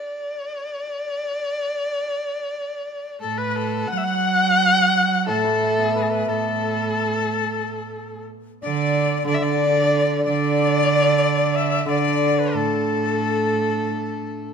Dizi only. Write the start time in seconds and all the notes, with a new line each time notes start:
3.20 A4
3.38 B4
3.91 F#5
3.98 E5
4.04 F#5
5.28 A4
5.95 B4
6.03 A4
6.10 B4
6.29 A4
8.62 D5
9.26 D5
9.40 D5
10.24 D5
11.56 E5
11.89 D5
12.39 B4
12.57 A4